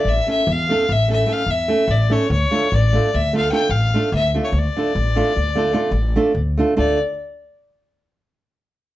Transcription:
Already playing: D5
0.05 A1
0.09 E5
0.27 A3 C#4 E4 A4 E5
0.47 E2
0.52 F5
0.69 A3 C#4 E4 A4
0.89 A1 E5
1.08 A3 C#4 E4 A4
1.13 E5
1.26 A3 C#4 E4 A4
1.32 F5
1.46 E2
1.51 E5
1.68 A3 C#4 E4 A4
1.88 A1 D5
2.10 A3 C#4 E4 A4 C#5
2.30 D2 C#5
2.51 A3 D4 F4 A4
2.72 A1 D5
2.93 A3 D4 F4 A4
3.14 D2 E5
3.33 A3 D4 F4 A4 F5
3.52 A3 D4 F4 A4 G5
3.69 A1 F5
3.94 A3 D4 F4 A4
4.12 D2 E5
4.34 A3 D4 F4 A4
4.44 C#5
4.52 D2
4.58 D5
4.77 A3 D4 F4 A4
4.95 A1
5.16 A3 D4 F4 A4
5.36 D2
5.55 A3 D4 F4 A4
5.73 A3 D4 F4 A4
5.91 A1
6.16 A3 D4 F4 A4
6.35 D2
6.57 A3 D4 F4 A4
6.76 D2 A3 D4 F4 A4 D5

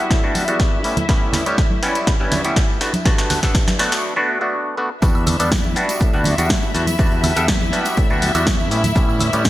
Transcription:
Already playing: G3 B3 D4 E4 F#4 E5
0.11 A2, kick, snare, closed hi-hat
0.23 D2 G3 B3 D4 F#4, tambourine
0.35 open hi-hat, high conga
0.48 E2 G3 B3 D4 F#4, closed hi-hat, tambourine
0.59 kick, snare, closed hi-hat, tambourine
0.72 tambourine
0.84 A2 G3 B3 C#4 E4, open hi-hat
0.97 closed hi-hat, tambourine, high conga, low conga
1.09 G3 B3 C#4 E4, kick, snare, closed hi-hat
1.22 tambourine
1.33 snare, open hi-hat, low conga
1.46 A2 G3 B3 C#4 G4, closed hi-hat, tambourine
1.58 kick, snare, closed hi-hat
1.70 tambourine, high conga
1.83 G3 B3 C#4 E4, snare, open hi-hat
1.95 closed hi-hat, tambourine
2.07 C#3, kick, snare, closed hi-hat
2.19 G2 G3 B3 C#4 E4, tambourine
2.32 snare, open hi-hat, high conga, low conga
2.44 A2 G3 B3 C#4 E4, closed hi-hat, tambourine
2.56 kick, snare, closed hi-hat, tambourine
2.70 tambourine
2.81 G2 A3 B3 D4 F#4, snare, open hi-hat
2.94 closed hi-hat, tambourine, high conga
3.05 G2 A3 B3 D4 F#4, kick, snare, closed hi-hat, tambourine
3.18 snare, tambourine
3.30 snare, open hi-hat, low conga
3.43 G2 A3 B3 D4 A4, kick, snare, closed hi-hat, tambourine
3.54 kick, snare, closed hi-hat, tambourine
3.67 snare, tambourine, high conga
3.79 A3 B3 D4 F#4, snare, open hi-hat
3.92 snare, closed hi-hat, tambourine
4.16 A3 B3 D4 F#4
4.41 A3 B3 D4 F#4
4.77 A3 B3 D4 F#4
5.02 E2 G3 B3 D4 E4 F#4 E5, kick, closed hi-hat, tambourine, shaker
5.15 tambourine, high woodblock
5.27 open hi-hat, low conga, high woodblock, shaker
5.39 E2 G3 B3 D4 A4, closed hi-hat, tambourine, shaker
5.52 kick, snare, closed hi-hat, shaker
5.64 tambourine, high conga
5.76 G3 B3 D4 F#4, open hi-hat, shaker
5.89 closed hi-hat, tambourine, shaker
6.00 A2, kick, closed hi-hat, tambourine, shaker
6.13 D2 G3 B3 D4 F#4, tambourine
6.24 open hi-hat, high conga, low conga, shaker
6.38 E2 G3 B3 D4 F#4, closed hi-hat, tambourine, shaker
6.49 kick, snare, closed hi-hat, tambourine, shaker
6.63 tambourine
6.74 E2 G3 B3 D4 F#4, open hi-hat, shaker
6.87 closed hi-hat, tambourine, high conga, shaker
6.99 E2 G3 B3 D4 F#4, kick, closed hi-hat, tambourine, shaker
7.12 tambourine
7.24 open hi-hat, low conga, high woodblock, shaker
7.36 E2 G3 B3 D4 A4, closed hi-hat, tambourine, shaker
7.48 kick, snare, closed hi-hat, tambourine, shaker
7.60 tambourine, high conga
7.72 G3 B3 D4 F#4, open hi-hat, shaker
7.85 closed hi-hat, tambourine, shaker
7.97 A2, kick, closed hi-hat, tambourine, shaker
8.10 D2 G3 B3 D4 F#4, tambourine
8.22 open hi-hat, high conga, shaker
8.35 E2 G3 B3 D4 F#4, closed hi-hat, tambourine, high woodblock, shaker
8.47 kick, snare, closed hi-hat, tambourine, shaker
8.59 tambourine
8.71 A2 G3 B3 C#4 E4, open hi-hat, shaker
8.84 closed hi-hat, tambourine, high conga, low conga, shaker
8.95 A2 G3 B3 C#4 E4, kick, closed hi-hat, tambourine, shaker
9.09 tambourine, high woodblock
9.19 open hi-hat, low conga, high woodblock, shaker
9.33 A2 G3 B3 C#4 G4, closed hi-hat, tambourine, shaker
9.45 kick, snare, closed hi-hat, tambourine, shaker

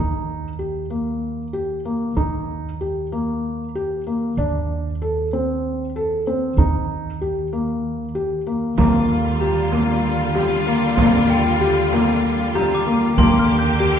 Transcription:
Already playing: D#2 D#4
0.59 G4
0.90 A#3
1.53 G4
1.85 A#3
2.16 D#2 D#4
2.81 G4
3.12 A#3
3.75 G4
4.07 A#3
4.37 D#2 D4
5.02 A4
5.33 C4
5.96 A4
6.27 C4
6.57 D#2 D#4
7.21 G4
7.53 A#3
8.15 G4
8.47 A#3
8.78 D#2 D3 G3 A#3 F4, frame drum
9.40 G4 A#5, frame drum
9.72 A#3, frame drum
10.04 frame drum
10.35 G4, frame drum
10.67 A#3
10.97 D#2 A#3, frame drum
11.30 G5
11.61 G4
11.92 A#3, frame drum
12.23 frame drum
12.55 G4 A#5, frame drum
12.75 D6
12.87 A#3
13.18 D#2 D3 A#3 G4 C6, frame drum
13.39 F6
13.59 G6
13.80 G4, frame drum

